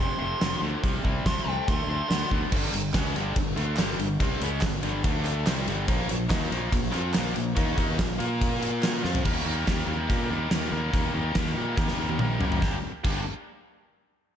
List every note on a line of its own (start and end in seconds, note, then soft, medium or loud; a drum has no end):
0.00 0.12 F1 medium
0.00 0.17 F2 medium
0.00 0.17 C3 loud
0.00 0.19 C6 loud
0.19 0.33 F1 medium
0.19 0.38 F2 medium
0.19 0.38 C3 medium
0.19 0.60 C6 loud
0.41 0.54 F1 medium
0.41 0.60 F2 medium
0.41 0.60 D3 medium
0.41 snare loud
0.41 closed hi-hat medium
0.62 0.75 D2 medium
0.62 0.81 F2 medium
0.62 0.81 D3 medium
0.83 0.96 C2 medium
0.83 1.02 C3 medium
0.83 1.02 G3 medium
0.83 kick loud
0.83 closed hi-hat medium
1.04 1.17 C2 medium
1.04 1.23 C3 medium
1.04 1.23 G3 medium
1.04 kick medium
1.26 1.38 C2 medium
1.26 1.45 C3 medium
1.26 1.45 A3 medium
1.26 1.48 C6 medium
1.26 kick medium
1.26 snare loud
1.26 closed hi-hat medium
1.38 snare soft
1.46 1.59 C2 medium
1.46 1.65 C3 medium
1.46 1.66 A3 medium
1.46 1.67 G5 loud
1.68 1.81 D2 medium
1.68 1.87 D3 medium
1.68 1.87 A3 medium
1.68 1.88 C6 loud
1.68 kick loud
1.68 closed hi-hat medium
1.87 2.00 D2 medium
1.87 2.07 D3 medium
1.87 2.08 A3 medium
1.87 2.30 C6 loud
2.09 2.23 D2 medium
2.09 2.28 D3 medium
2.09 2.28 B3 medium
2.09 snare loud
2.09 closed hi-hat medium
2.31 2.44 D2 medium
2.31 2.49 D3 medium
2.31 2.50 B3 medium
2.31 kick medium
2.52 2.72 G1 medium
2.52 2.71 G2 medium
2.52 2.71 D3 loud
2.52 2.72 G3 loud
2.52 kick loud
2.52 crash loud
2.72 2.92 G1 medium
2.72 2.89 G2 medium
2.72 2.89 D3 medium
2.72 ride medium
2.93 3.13 C#2 medium
2.93 3.14 C#3 medium
2.93 3.14 G#3 medium
2.93 3.14 C#4 loud
2.93 kick medium
2.93 snare loud
2.93 clap medium
2.93 ride loud
3.05 snare soft
3.15 3.35 G1 medium
3.15 3.34 G2 medium
3.15 3.35 D3 loud
3.15 3.36 G3 medium
3.15 ride medium
3.35 3.55 G1 medium
3.35 3.52 G2 medium
3.35 3.52 D3 medium
3.35 kick loud
3.35 ride medium
3.56 3.77 D2 loud
3.56 3.76 D3 loud
3.56 3.77 A3 loud
3.56 3.77 D4 loud
3.56 ride medium
3.76 3.98 G1 medium
3.76 3.97 G2 medium
3.76 3.98 D3 loud
3.76 3.98 G3 loud
3.76 snare loud
3.76 clap loud
3.76 ride medium
3.98 4.18 G1 medium
3.98 4.15 G2 medium
3.98 4.16 D3 medium
3.98 ride medium
4.20 4.39 C2 medium
4.20 4.40 C3 medium
4.20 4.40 G3 loud
4.20 4.41 C4 loud
4.20 kick loud
4.20 ride medium
4.41 4.60 C#2 medium
4.41 4.62 C#3 medium
4.41 4.62 G#3 medium
4.41 4.62 C#4 loud
4.41 ride medium
4.61 4.82 G1 medium
4.61 4.79 G2 medium
4.61 4.79 D3 medium
4.61 kick medium
4.61 snare loud
4.61 clap loud
4.61 ride loud
4.83 5.02 G1 medium
4.83 5.03 G2 medium
4.83 5.03 D3 loud
4.83 5.04 G3 medium
4.83 ride medium
5.04 5.43 D2 loud
5.04 5.45 D3 medium
5.04 5.45 A3 loud
5.04 5.46 D4 loud
5.04 kick loud
5.04 ride loud
5.25 clap medium
5.25 ride medium
5.46 5.66 C2 loud
5.46 5.66 C3 loud
5.46 5.67 G3 loud
5.46 5.67 C4 loud
5.46 snare loud
5.46 clap loud
5.46 ride loud
5.68 5.87 G1 loud
5.68 5.88 G2 medium
5.68 5.87 D3 loud
5.68 5.87 G3 medium
5.68 ride medium
5.87 6.08 A#1 medium
5.87 6.07 A#2 loud
5.87 6.08 F3 loud
5.87 6.08 A#3 loud
5.87 kick loud
5.87 ride loud
6.08 6.30 A#1 medium
6.08 6.25 A#2 medium
6.08 6.26 F3 medium
6.08 ride medium
6.29 6.50 D#2 loud
6.29 6.49 D#3 medium
6.29 6.50 A#3 medium
6.29 6.50 D#4 loud
6.29 kick medium
6.29 snare loud
6.29 clap loud
6.29 ride loud
6.41 snare soft
6.50 6.71 A#1 loud
6.50 6.70 A#2 medium
6.50 6.70 F3 medium
6.50 6.71 A#3 medium
6.50 ride medium
6.71 6.92 A#1 medium
6.71 6.88 A#2 medium
6.71 6.89 F3 medium
6.71 kick loud
6.71 ride loud
6.91 7.12 F3 medium
6.91 7.13 C4 medium
6.91 7.13 F4 loud
6.91 clap medium
6.91 ride medium
6.95 7.14 F2 medium
7.13 7.34 A#2 medium
7.13 7.33 F3 loud
7.13 7.35 A#3 loud
7.13 snare loud
7.13 clap loud
7.13 ride loud
7.17 7.35 A#1 medium
7.35 7.56 A#1 medium
7.35 7.52 A#2 medium
7.35 7.52 F3 medium
7.35 ride medium
7.56 7.76 D#2 medium
7.56 7.76 D#3 loud
7.56 7.77 A#3 loud
7.56 7.77 D#4 loud
7.56 kick loud
7.56 ride medium
7.78 7.97 D#2 medium
7.78 7.98 D#3 medium
7.78 7.98 A#3 medium
7.78 7.98 D#4 loud
7.78 kick medium
7.78 ride medium
7.99 8.18 A#1 medium
7.99 8.16 A#2 medium
7.99 8.16 F3 medium
7.99 kick medium
7.99 snare loud
7.99 clap loud
7.99 ride loud
8.18 9.00 A#2 medium
8.18 9.03 A#3 medium
8.18 9.03 F4 medium
8.18 9.03 A#4 loud
8.18 ride medium
8.41 kick loud
8.41 ride loud
8.62 clap medium
8.62 ride medium
8.83 snare loud
8.83 clap medium
8.83 ride loud
9.03 9.26 F2 medium
9.03 9.24 F3 medium
9.03 9.24 C4 medium
9.03 9.24 F4 loud
9.03 snare medium
9.15 floor tom loud
9.24 9.44 D#2 medium
9.24 9.45 D#3 medium
9.24 9.44 G3 medium
9.24 9.45 A#3 loud
9.24 9.46 G4 loud
9.24 9.45 A#4 loud
9.24 kick medium
9.24 crash medium
9.45 9.64 D#2 medium
9.45 9.66 D#3 medium
9.45 9.66 G3 medium
9.45 9.66 A#3 medium
9.45 9.67 G4 medium
9.45 9.67 A#4 medium
9.66 9.86 D#2 medium
9.66 9.85 D#3 medium
9.66 9.86 G3 medium
9.66 9.87 A#3 medium
9.66 9.87 G4 medium
9.66 9.87 A#4 medium
9.66 kick medium
9.66 snare loud
9.66 closed hi-hat medium
9.78 snare soft
9.86 10.06 D#2 medium
9.86 10.06 D#3 medium
9.86 10.08 G3 medium
9.86 10.07 A#3 medium
9.86 10.08 G4 medium
9.86 10.09 A#4 medium
10.07 10.28 A#2 medium
10.07 10.28 D#3 medium
10.07 10.29 G3 medium
10.07 10.29 A#3 loud
10.07 10.30 G4 loud
10.07 10.30 A#4 loud
10.07 kick loud
10.07 closed hi-hat medium
10.29 10.49 D#2 medium
10.29 10.49 D#3 medium
10.29 10.51 G3 medium
10.29 10.50 A#3 medium
10.29 10.51 G4 medium
10.29 10.51 A#4 medium
10.51 10.70 D#2 medium
10.51 10.70 D#3 medium
10.51 10.72 G3 medium
10.51 10.71 A#3 medium
10.51 10.72 G4 medium
10.51 10.72 A#4 medium
10.51 snare loud
10.51 closed hi-hat medium
10.71 10.91 D#2 medium
10.71 10.91 D#3 medium
10.71 10.92 G3 medium
10.71 10.92 A#3 medium
10.71 10.93 G4 medium
10.71 10.92 A#4 loud
10.92 11.12 D#2 medium
10.92 11.13 D#3 medium
10.92 11.14 G3 loud
10.92 11.13 A#3 medium
10.92 11.14 G4 medium
10.92 11.14 A#4 loud
10.92 kick loud
10.92 closed hi-hat medium
11.14 11.33 D#2 medium
11.14 11.34 D#3 medium
11.14 11.35 G3 medium
11.14 11.34 A#3 medium
11.14 11.35 G4 medium
11.14 11.35 A#4 medium
11.35 11.54 D#2 medium
11.35 11.54 D#3 medium
11.35 11.56 G3 medium
11.35 11.55 A#3 medium
11.35 11.55 G4 loud
11.35 11.56 A#4 loud
11.35 kick medium
11.35 snare loud
11.35 closed hi-hat medium
11.46 snare soft
11.54 11.74 A#2 medium
11.54 11.75 D#3 medium
11.54 11.76 G3 medium
11.54 11.75 A#3 medium
11.54 11.76 G4 medium
11.54 11.77 A#4 medium
11.76 11.96 D#2 medium
11.76 11.97 D#3 medium
11.76 11.98 G3 medium
11.76 11.98 A#3 loud
11.76 11.98 G4 loud
11.76 11.99 A#4 medium
11.76 kick loud
11.76 snare medium
11.88 snare medium
11.96 12.16 D#2 medium
11.96 12.18 D#3 medium
11.96 12.19 G3 medium
11.96 12.19 A#3 medium
11.96 12.20 G4 medium
11.96 12.19 A#4 medium
12.09 high tom medium
12.18 12.37 A#1 medium
12.18 12.39 D#3 medium
12.18 12.40 G3 medium
12.18 12.39 A#3 medium
12.18 12.41 G4 medium
12.18 12.41 A#4 loud
12.18 mid tom medium
12.40 12.59 F#2 medium
12.40 12.61 D#3 medium
12.40 12.60 G3 medium
12.40 12.60 A#3 medium
12.40 12.61 G4 medium
12.40 12.61 A#4 medium
12.40 floor tom medium
12.52 floor tom medium
12.61 12.74 G1 medium
12.61 12.74 G3 medium
12.61 12.74 A#3 loud
12.61 12.75 D4 loud
12.61 12.75 G4 loud
12.61 kick loud
12.61 snare medium
13.04 13.24 G1 medium
13.04 13.21 G3 medium
13.04 13.21 A#3 loud
13.04 13.22 D4 loud
13.04 13.22 G4 medium
13.04 kick loud
13.04 crash medium